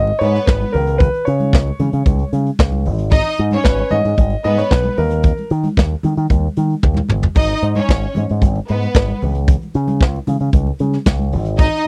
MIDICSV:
0, 0, Header, 1, 5, 480
1, 0, Start_track
1, 0, Key_signature, 5, "minor"
1, 0, Tempo, 529568
1, 910, Time_signature, 4, 2, 24, 8
1, 10763, End_track
2, 0, Start_track
2, 0, Title_t, "Grand piano"
2, 0, Program_c, 0, 0
2, 0, Note_on_c, 0, 75, 97
2, 170, Note_on_c, 0, 73, 97
2, 187, Note_off_c, 0, 75, 0
2, 420, Note_on_c, 0, 71, 76
2, 427, Note_off_c, 0, 73, 0
2, 657, Note_on_c, 0, 70, 80
2, 672, Note_off_c, 0, 71, 0
2, 891, Note_on_c, 0, 71, 95
2, 911, Note_off_c, 0, 70, 0
2, 1133, Note_on_c, 0, 73, 83
2, 1148, Note_off_c, 0, 71, 0
2, 2066, Note_off_c, 0, 73, 0
2, 3297, Note_on_c, 0, 71, 84
2, 3543, Note_on_c, 0, 75, 109
2, 3551, Note_off_c, 0, 71, 0
2, 4013, Note_off_c, 0, 75, 0
2, 4027, Note_on_c, 0, 75, 96
2, 4152, Note_off_c, 0, 75, 0
2, 4153, Note_on_c, 0, 73, 76
2, 4266, Note_on_c, 0, 71, 85
2, 4275, Note_off_c, 0, 73, 0
2, 4511, Note_on_c, 0, 70, 83
2, 4516, Note_off_c, 0, 71, 0
2, 4957, Note_off_c, 0, 70, 0
2, 10763, End_track
3, 0, Start_track
3, 0, Title_t, "Violin section"
3, 0, Program_c, 1, 48
3, 185, Note_on_c, 1, 59, 68
3, 188, Note_on_c, 1, 71, 74
3, 639, Note_off_c, 1, 59, 0
3, 640, Note_off_c, 1, 71, 0
3, 2824, Note_on_c, 1, 63, 109
3, 2828, Note_on_c, 1, 75, 122
3, 3018, Note_off_c, 1, 63, 0
3, 3021, Note_off_c, 1, 75, 0
3, 3199, Note_on_c, 1, 73, 91
3, 3200, Note_on_c, 1, 61, 82
3, 3534, Note_off_c, 1, 61, 0
3, 3534, Note_off_c, 1, 73, 0
3, 4029, Note_on_c, 1, 59, 68
3, 4032, Note_on_c, 1, 71, 73
3, 4481, Note_off_c, 1, 59, 0
3, 4482, Note_off_c, 1, 71, 0
3, 6678, Note_on_c, 1, 75, 115
3, 6679, Note_on_c, 1, 63, 96
3, 6867, Note_off_c, 1, 63, 0
3, 6867, Note_off_c, 1, 75, 0
3, 7037, Note_on_c, 1, 61, 81
3, 7042, Note_on_c, 1, 73, 83
3, 7371, Note_off_c, 1, 61, 0
3, 7374, Note_off_c, 1, 73, 0
3, 7874, Note_on_c, 1, 71, 70
3, 7875, Note_on_c, 1, 59, 72
3, 8322, Note_off_c, 1, 71, 0
3, 8323, Note_off_c, 1, 59, 0
3, 10502, Note_on_c, 1, 63, 108
3, 10502, Note_on_c, 1, 75, 107
3, 10696, Note_off_c, 1, 63, 0
3, 10696, Note_off_c, 1, 75, 0
3, 10763, End_track
4, 0, Start_track
4, 0, Title_t, "Picked electric bass"
4, 0, Program_c, 2, 34
4, 0, Note_on_c, 2, 32, 104
4, 99, Note_off_c, 2, 32, 0
4, 192, Note_on_c, 2, 44, 101
4, 341, Note_off_c, 2, 44, 0
4, 430, Note_on_c, 2, 32, 85
4, 580, Note_off_c, 2, 32, 0
4, 679, Note_on_c, 2, 37, 98
4, 977, Note_off_c, 2, 37, 0
4, 1156, Note_on_c, 2, 49, 90
4, 1389, Note_on_c, 2, 37, 93
4, 1403, Note_off_c, 2, 49, 0
4, 1540, Note_off_c, 2, 37, 0
4, 1628, Note_on_c, 2, 49, 88
4, 1704, Note_off_c, 2, 49, 0
4, 1752, Note_on_c, 2, 49, 85
4, 1827, Note_off_c, 2, 49, 0
4, 1870, Note_on_c, 2, 37, 97
4, 2020, Note_off_c, 2, 37, 0
4, 2109, Note_on_c, 2, 49, 75
4, 2260, Note_off_c, 2, 49, 0
4, 2354, Note_on_c, 2, 37, 86
4, 2599, Note_on_c, 2, 32, 100
4, 2613, Note_off_c, 2, 37, 0
4, 2897, Note_off_c, 2, 32, 0
4, 3075, Note_on_c, 2, 44, 89
4, 3224, Note_off_c, 2, 44, 0
4, 3307, Note_on_c, 2, 32, 83
4, 3459, Note_off_c, 2, 32, 0
4, 3552, Note_on_c, 2, 44, 86
4, 3626, Note_off_c, 2, 44, 0
4, 3672, Note_on_c, 2, 44, 89
4, 3746, Note_off_c, 2, 44, 0
4, 3790, Note_on_c, 2, 32, 102
4, 3940, Note_off_c, 2, 32, 0
4, 4033, Note_on_c, 2, 44, 94
4, 4182, Note_off_c, 2, 44, 0
4, 4272, Note_on_c, 2, 35, 83
4, 4421, Note_off_c, 2, 35, 0
4, 4513, Note_on_c, 2, 39, 102
4, 4813, Note_off_c, 2, 39, 0
4, 4994, Note_on_c, 2, 51, 92
4, 5143, Note_off_c, 2, 51, 0
4, 5233, Note_on_c, 2, 39, 86
4, 5382, Note_off_c, 2, 39, 0
4, 5478, Note_on_c, 2, 51, 83
4, 5551, Note_off_c, 2, 51, 0
4, 5597, Note_on_c, 2, 51, 91
4, 5670, Note_off_c, 2, 51, 0
4, 5715, Note_on_c, 2, 39, 106
4, 5863, Note_off_c, 2, 39, 0
4, 5958, Note_on_c, 2, 51, 91
4, 6106, Note_off_c, 2, 51, 0
4, 6195, Note_on_c, 2, 39, 85
4, 6344, Note_off_c, 2, 39, 0
4, 6441, Note_on_c, 2, 31, 89
4, 6587, Note_off_c, 2, 31, 0
4, 6672, Note_on_c, 2, 32, 94
4, 6821, Note_off_c, 2, 32, 0
4, 6912, Note_on_c, 2, 44, 92
4, 7061, Note_off_c, 2, 44, 0
4, 7151, Note_on_c, 2, 32, 104
4, 7300, Note_off_c, 2, 32, 0
4, 7403, Note_on_c, 2, 44, 77
4, 7474, Note_off_c, 2, 44, 0
4, 7529, Note_on_c, 2, 44, 88
4, 7632, Note_on_c, 2, 32, 102
4, 7646, Note_off_c, 2, 44, 0
4, 7781, Note_off_c, 2, 32, 0
4, 7885, Note_on_c, 2, 44, 92
4, 8030, Note_off_c, 2, 44, 0
4, 8115, Note_on_c, 2, 32, 84
4, 8263, Note_off_c, 2, 32, 0
4, 8364, Note_on_c, 2, 37, 87
4, 8659, Note_off_c, 2, 37, 0
4, 8837, Note_on_c, 2, 49, 102
4, 9076, Note_on_c, 2, 37, 86
4, 9089, Note_off_c, 2, 49, 0
4, 9223, Note_off_c, 2, 37, 0
4, 9315, Note_on_c, 2, 49, 87
4, 9388, Note_off_c, 2, 49, 0
4, 9432, Note_on_c, 2, 49, 85
4, 9506, Note_off_c, 2, 49, 0
4, 9550, Note_on_c, 2, 37, 101
4, 9699, Note_off_c, 2, 37, 0
4, 9791, Note_on_c, 2, 49, 80
4, 9940, Note_off_c, 2, 49, 0
4, 10028, Note_on_c, 2, 37, 93
4, 10271, Note_on_c, 2, 32, 102
4, 10284, Note_off_c, 2, 37, 0
4, 10570, Note_off_c, 2, 32, 0
4, 10763, End_track
5, 0, Start_track
5, 0, Title_t, "Drums"
5, 67, Note_on_c, 9, 62, 44
5, 157, Note_off_c, 9, 62, 0
5, 191, Note_on_c, 9, 42, 56
5, 195, Note_on_c, 9, 63, 62
5, 282, Note_off_c, 9, 42, 0
5, 286, Note_off_c, 9, 63, 0
5, 314, Note_on_c, 9, 42, 38
5, 322, Note_on_c, 9, 38, 32
5, 405, Note_off_c, 9, 42, 0
5, 413, Note_off_c, 9, 38, 0
5, 428, Note_on_c, 9, 62, 29
5, 430, Note_on_c, 9, 36, 112
5, 438, Note_on_c, 9, 38, 120
5, 519, Note_off_c, 9, 62, 0
5, 521, Note_off_c, 9, 36, 0
5, 529, Note_off_c, 9, 38, 0
5, 540, Note_on_c, 9, 63, 68
5, 547, Note_on_c, 9, 42, 35
5, 631, Note_off_c, 9, 63, 0
5, 638, Note_off_c, 9, 42, 0
5, 666, Note_on_c, 9, 46, 63
5, 671, Note_on_c, 9, 64, 67
5, 757, Note_off_c, 9, 46, 0
5, 762, Note_off_c, 9, 64, 0
5, 787, Note_on_c, 9, 42, 42
5, 877, Note_off_c, 9, 42, 0
5, 901, Note_on_c, 9, 64, 78
5, 909, Note_on_c, 9, 36, 122
5, 909, Note_on_c, 9, 42, 91
5, 991, Note_off_c, 9, 64, 0
5, 1000, Note_off_c, 9, 36, 0
5, 1000, Note_off_c, 9, 42, 0
5, 1032, Note_on_c, 9, 42, 33
5, 1123, Note_off_c, 9, 42, 0
5, 1145, Note_on_c, 9, 42, 59
5, 1236, Note_off_c, 9, 42, 0
5, 1270, Note_on_c, 9, 63, 71
5, 1272, Note_on_c, 9, 42, 49
5, 1361, Note_off_c, 9, 63, 0
5, 1362, Note_off_c, 9, 42, 0
5, 1388, Note_on_c, 9, 36, 120
5, 1400, Note_on_c, 9, 38, 101
5, 1478, Note_off_c, 9, 36, 0
5, 1490, Note_off_c, 9, 38, 0
5, 1520, Note_on_c, 9, 62, 39
5, 1611, Note_off_c, 9, 62, 0
5, 1624, Note_on_c, 9, 42, 67
5, 1632, Note_on_c, 9, 63, 63
5, 1632, Note_on_c, 9, 64, 80
5, 1715, Note_off_c, 9, 42, 0
5, 1722, Note_off_c, 9, 63, 0
5, 1722, Note_off_c, 9, 64, 0
5, 1746, Note_on_c, 9, 42, 44
5, 1837, Note_off_c, 9, 42, 0
5, 1863, Note_on_c, 9, 42, 74
5, 1866, Note_on_c, 9, 36, 101
5, 1872, Note_on_c, 9, 63, 63
5, 1954, Note_off_c, 9, 42, 0
5, 1956, Note_off_c, 9, 36, 0
5, 1963, Note_off_c, 9, 63, 0
5, 1984, Note_on_c, 9, 42, 35
5, 2074, Note_off_c, 9, 42, 0
5, 2109, Note_on_c, 9, 42, 64
5, 2126, Note_on_c, 9, 63, 61
5, 2200, Note_off_c, 9, 42, 0
5, 2216, Note_off_c, 9, 63, 0
5, 2231, Note_on_c, 9, 42, 39
5, 2322, Note_off_c, 9, 42, 0
5, 2348, Note_on_c, 9, 36, 115
5, 2354, Note_on_c, 9, 38, 126
5, 2438, Note_off_c, 9, 36, 0
5, 2445, Note_off_c, 9, 38, 0
5, 2464, Note_on_c, 9, 42, 31
5, 2465, Note_on_c, 9, 62, 34
5, 2465, Note_on_c, 9, 63, 74
5, 2555, Note_off_c, 9, 42, 0
5, 2556, Note_off_c, 9, 62, 0
5, 2556, Note_off_c, 9, 63, 0
5, 2585, Note_on_c, 9, 46, 58
5, 2592, Note_on_c, 9, 64, 72
5, 2675, Note_off_c, 9, 46, 0
5, 2682, Note_off_c, 9, 64, 0
5, 2703, Note_on_c, 9, 42, 46
5, 2793, Note_off_c, 9, 42, 0
5, 2818, Note_on_c, 9, 42, 93
5, 2820, Note_on_c, 9, 62, 32
5, 2820, Note_on_c, 9, 64, 77
5, 2826, Note_on_c, 9, 36, 114
5, 2909, Note_off_c, 9, 42, 0
5, 2911, Note_off_c, 9, 62, 0
5, 2911, Note_off_c, 9, 64, 0
5, 2916, Note_off_c, 9, 36, 0
5, 3060, Note_on_c, 9, 42, 64
5, 3151, Note_off_c, 9, 42, 0
5, 3181, Note_on_c, 9, 63, 70
5, 3185, Note_on_c, 9, 42, 51
5, 3271, Note_off_c, 9, 63, 0
5, 3276, Note_off_c, 9, 42, 0
5, 3306, Note_on_c, 9, 36, 107
5, 3311, Note_on_c, 9, 38, 93
5, 3396, Note_off_c, 9, 36, 0
5, 3402, Note_off_c, 9, 38, 0
5, 3428, Note_on_c, 9, 42, 29
5, 3432, Note_on_c, 9, 62, 39
5, 3519, Note_off_c, 9, 42, 0
5, 3523, Note_off_c, 9, 62, 0
5, 3540, Note_on_c, 9, 63, 66
5, 3540, Note_on_c, 9, 64, 71
5, 3545, Note_on_c, 9, 42, 58
5, 3630, Note_off_c, 9, 63, 0
5, 3630, Note_off_c, 9, 64, 0
5, 3636, Note_off_c, 9, 42, 0
5, 3670, Note_on_c, 9, 42, 49
5, 3761, Note_off_c, 9, 42, 0
5, 3781, Note_on_c, 9, 63, 65
5, 3785, Note_on_c, 9, 42, 65
5, 3787, Note_on_c, 9, 36, 90
5, 3872, Note_off_c, 9, 63, 0
5, 3876, Note_off_c, 9, 42, 0
5, 3878, Note_off_c, 9, 36, 0
5, 3900, Note_on_c, 9, 62, 42
5, 3905, Note_on_c, 9, 42, 33
5, 3990, Note_off_c, 9, 62, 0
5, 3995, Note_off_c, 9, 42, 0
5, 4026, Note_on_c, 9, 42, 64
5, 4031, Note_on_c, 9, 63, 61
5, 4117, Note_off_c, 9, 42, 0
5, 4122, Note_off_c, 9, 63, 0
5, 4148, Note_on_c, 9, 42, 41
5, 4156, Note_on_c, 9, 38, 31
5, 4239, Note_off_c, 9, 42, 0
5, 4246, Note_off_c, 9, 38, 0
5, 4270, Note_on_c, 9, 36, 107
5, 4279, Note_on_c, 9, 38, 115
5, 4361, Note_off_c, 9, 36, 0
5, 4370, Note_off_c, 9, 38, 0
5, 4378, Note_on_c, 9, 63, 68
5, 4385, Note_on_c, 9, 42, 35
5, 4468, Note_off_c, 9, 63, 0
5, 4475, Note_off_c, 9, 42, 0
5, 4505, Note_on_c, 9, 46, 66
5, 4511, Note_on_c, 9, 64, 70
5, 4596, Note_off_c, 9, 46, 0
5, 4601, Note_off_c, 9, 64, 0
5, 4622, Note_on_c, 9, 42, 42
5, 4712, Note_off_c, 9, 42, 0
5, 4740, Note_on_c, 9, 42, 86
5, 4743, Note_on_c, 9, 62, 31
5, 4743, Note_on_c, 9, 64, 74
5, 4749, Note_on_c, 9, 36, 107
5, 4830, Note_off_c, 9, 42, 0
5, 4834, Note_off_c, 9, 62, 0
5, 4834, Note_off_c, 9, 64, 0
5, 4839, Note_off_c, 9, 36, 0
5, 4869, Note_on_c, 9, 42, 32
5, 4883, Note_on_c, 9, 62, 35
5, 4959, Note_off_c, 9, 42, 0
5, 4974, Note_off_c, 9, 62, 0
5, 4986, Note_on_c, 9, 42, 58
5, 5076, Note_off_c, 9, 42, 0
5, 5109, Note_on_c, 9, 63, 72
5, 5113, Note_on_c, 9, 42, 47
5, 5199, Note_off_c, 9, 63, 0
5, 5203, Note_off_c, 9, 42, 0
5, 5232, Note_on_c, 9, 36, 112
5, 5234, Note_on_c, 9, 62, 35
5, 5246, Note_on_c, 9, 38, 94
5, 5322, Note_off_c, 9, 36, 0
5, 5325, Note_off_c, 9, 62, 0
5, 5336, Note_off_c, 9, 38, 0
5, 5357, Note_on_c, 9, 62, 34
5, 5447, Note_off_c, 9, 62, 0
5, 5468, Note_on_c, 9, 63, 66
5, 5468, Note_on_c, 9, 64, 74
5, 5472, Note_on_c, 9, 42, 69
5, 5559, Note_off_c, 9, 63, 0
5, 5559, Note_off_c, 9, 64, 0
5, 5562, Note_off_c, 9, 42, 0
5, 5593, Note_on_c, 9, 42, 47
5, 5684, Note_off_c, 9, 42, 0
5, 5710, Note_on_c, 9, 62, 28
5, 5710, Note_on_c, 9, 63, 64
5, 5711, Note_on_c, 9, 36, 99
5, 5713, Note_on_c, 9, 42, 64
5, 5801, Note_off_c, 9, 36, 0
5, 5801, Note_off_c, 9, 62, 0
5, 5801, Note_off_c, 9, 63, 0
5, 5803, Note_off_c, 9, 42, 0
5, 5950, Note_on_c, 9, 42, 64
5, 5955, Note_on_c, 9, 63, 63
5, 6041, Note_off_c, 9, 42, 0
5, 6045, Note_off_c, 9, 63, 0
5, 6071, Note_on_c, 9, 42, 35
5, 6162, Note_off_c, 9, 42, 0
5, 6188, Note_on_c, 9, 62, 27
5, 6192, Note_on_c, 9, 36, 104
5, 6193, Note_on_c, 9, 48, 57
5, 6279, Note_off_c, 9, 62, 0
5, 6283, Note_off_c, 9, 36, 0
5, 6283, Note_off_c, 9, 48, 0
5, 6293, Note_on_c, 9, 62, 33
5, 6293, Note_on_c, 9, 63, 75
5, 6314, Note_on_c, 9, 47, 59
5, 6383, Note_off_c, 9, 62, 0
5, 6383, Note_off_c, 9, 63, 0
5, 6404, Note_off_c, 9, 47, 0
5, 6423, Note_on_c, 9, 64, 77
5, 6430, Note_on_c, 9, 45, 87
5, 6513, Note_off_c, 9, 64, 0
5, 6520, Note_off_c, 9, 45, 0
5, 6551, Note_on_c, 9, 43, 86
5, 6641, Note_off_c, 9, 43, 0
5, 6660, Note_on_c, 9, 64, 73
5, 6664, Note_on_c, 9, 42, 90
5, 6669, Note_on_c, 9, 36, 108
5, 6751, Note_off_c, 9, 64, 0
5, 6755, Note_off_c, 9, 42, 0
5, 6760, Note_off_c, 9, 36, 0
5, 6904, Note_on_c, 9, 42, 69
5, 6994, Note_off_c, 9, 42, 0
5, 7025, Note_on_c, 9, 63, 82
5, 7029, Note_on_c, 9, 42, 53
5, 7115, Note_off_c, 9, 63, 0
5, 7120, Note_off_c, 9, 42, 0
5, 7149, Note_on_c, 9, 36, 107
5, 7164, Note_on_c, 9, 38, 109
5, 7240, Note_off_c, 9, 36, 0
5, 7255, Note_off_c, 9, 38, 0
5, 7280, Note_on_c, 9, 62, 37
5, 7371, Note_off_c, 9, 62, 0
5, 7386, Note_on_c, 9, 63, 70
5, 7386, Note_on_c, 9, 64, 75
5, 7392, Note_on_c, 9, 42, 60
5, 7477, Note_off_c, 9, 63, 0
5, 7477, Note_off_c, 9, 64, 0
5, 7483, Note_off_c, 9, 42, 0
5, 7516, Note_on_c, 9, 42, 51
5, 7606, Note_off_c, 9, 42, 0
5, 7629, Note_on_c, 9, 36, 95
5, 7630, Note_on_c, 9, 62, 28
5, 7630, Note_on_c, 9, 63, 64
5, 7633, Note_on_c, 9, 42, 69
5, 7720, Note_off_c, 9, 36, 0
5, 7721, Note_off_c, 9, 62, 0
5, 7721, Note_off_c, 9, 63, 0
5, 7724, Note_off_c, 9, 42, 0
5, 7749, Note_on_c, 9, 42, 36
5, 7758, Note_on_c, 9, 62, 40
5, 7840, Note_off_c, 9, 42, 0
5, 7848, Note_off_c, 9, 62, 0
5, 7868, Note_on_c, 9, 42, 61
5, 7882, Note_on_c, 9, 63, 60
5, 7958, Note_off_c, 9, 42, 0
5, 7973, Note_off_c, 9, 63, 0
5, 7996, Note_on_c, 9, 42, 40
5, 8087, Note_off_c, 9, 42, 0
5, 8110, Note_on_c, 9, 36, 126
5, 8121, Note_on_c, 9, 38, 117
5, 8201, Note_off_c, 9, 36, 0
5, 8211, Note_off_c, 9, 38, 0
5, 8228, Note_on_c, 9, 63, 69
5, 8232, Note_on_c, 9, 42, 35
5, 8319, Note_off_c, 9, 63, 0
5, 8323, Note_off_c, 9, 42, 0
5, 8352, Note_on_c, 9, 46, 62
5, 8358, Note_on_c, 9, 64, 76
5, 8443, Note_off_c, 9, 46, 0
5, 8449, Note_off_c, 9, 64, 0
5, 8472, Note_on_c, 9, 42, 42
5, 8563, Note_off_c, 9, 42, 0
5, 8591, Note_on_c, 9, 62, 35
5, 8591, Note_on_c, 9, 64, 77
5, 8592, Note_on_c, 9, 36, 123
5, 8594, Note_on_c, 9, 42, 88
5, 8681, Note_off_c, 9, 62, 0
5, 8681, Note_off_c, 9, 64, 0
5, 8683, Note_off_c, 9, 36, 0
5, 8684, Note_off_c, 9, 42, 0
5, 8716, Note_on_c, 9, 42, 31
5, 8731, Note_on_c, 9, 62, 30
5, 8807, Note_off_c, 9, 42, 0
5, 8822, Note_off_c, 9, 62, 0
5, 8831, Note_on_c, 9, 42, 68
5, 8922, Note_off_c, 9, 42, 0
5, 8951, Note_on_c, 9, 63, 77
5, 8953, Note_on_c, 9, 42, 51
5, 9042, Note_off_c, 9, 63, 0
5, 9043, Note_off_c, 9, 42, 0
5, 9070, Note_on_c, 9, 36, 107
5, 9077, Note_on_c, 9, 62, 36
5, 9084, Note_on_c, 9, 38, 104
5, 9160, Note_off_c, 9, 36, 0
5, 9168, Note_off_c, 9, 62, 0
5, 9175, Note_off_c, 9, 38, 0
5, 9191, Note_on_c, 9, 42, 32
5, 9210, Note_on_c, 9, 62, 37
5, 9282, Note_off_c, 9, 42, 0
5, 9301, Note_off_c, 9, 62, 0
5, 9309, Note_on_c, 9, 42, 66
5, 9310, Note_on_c, 9, 63, 71
5, 9310, Note_on_c, 9, 64, 68
5, 9400, Note_off_c, 9, 42, 0
5, 9401, Note_off_c, 9, 63, 0
5, 9401, Note_off_c, 9, 64, 0
5, 9425, Note_on_c, 9, 42, 46
5, 9516, Note_off_c, 9, 42, 0
5, 9539, Note_on_c, 9, 42, 71
5, 9545, Note_on_c, 9, 36, 109
5, 9550, Note_on_c, 9, 63, 68
5, 9629, Note_off_c, 9, 42, 0
5, 9636, Note_off_c, 9, 36, 0
5, 9641, Note_off_c, 9, 63, 0
5, 9670, Note_on_c, 9, 62, 39
5, 9761, Note_off_c, 9, 62, 0
5, 9779, Note_on_c, 9, 42, 66
5, 9800, Note_on_c, 9, 63, 66
5, 9870, Note_off_c, 9, 42, 0
5, 9891, Note_off_c, 9, 63, 0
5, 9903, Note_on_c, 9, 42, 39
5, 9911, Note_on_c, 9, 38, 30
5, 9994, Note_off_c, 9, 42, 0
5, 10002, Note_off_c, 9, 38, 0
5, 10026, Note_on_c, 9, 36, 127
5, 10030, Note_on_c, 9, 38, 110
5, 10117, Note_off_c, 9, 36, 0
5, 10121, Note_off_c, 9, 38, 0
5, 10140, Note_on_c, 9, 63, 69
5, 10141, Note_on_c, 9, 42, 33
5, 10231, Note_off_c, 9, 63, 0
5, 10232, Note_off_c, 9, 42, 0
5, 10263, Note_on_c, 9, 46, 67
5, 10271, Note_on_c, 9, 64, 78
5, 10353, Note_off_c, 9, 46, 0
5, 10362, Note_off_c, 9, 64, 0
5, 10377, Note_on_c, 9, 42, 42
5, 10467, Note_off_c, 9, 42, 0
5, 10497, Note_on_c, 9, 42, 87
5, 10502, Note_on_c, 9, 64, 79
5, 10504, Note_on_c, 9, 36, 122
5, 10587, Note_off_c, 9, 42, 0
5, 10593, Note_off_c, 9, 64, 0
5, 10595, Note_off_c, 9, 36, 0
5, 10732, Note_on_c, 9, 42, 66
5, 10763, Note_off_c, 9, 42, 0
5, 10763, End_track
0, 0, End_of_file